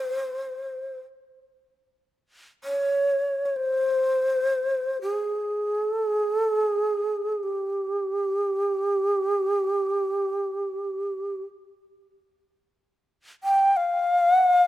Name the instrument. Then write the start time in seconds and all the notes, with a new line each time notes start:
shakuhachi
Already playing: C5
2.64 C#5
3.45 C#5
3.56 C5
5.02 G#4
5.87 A4
6.10 G#4
6.35 A4
6.57 G#4
7.43 G4
13.43 G5
13.77 F5
14.36 F#5
14.52 F5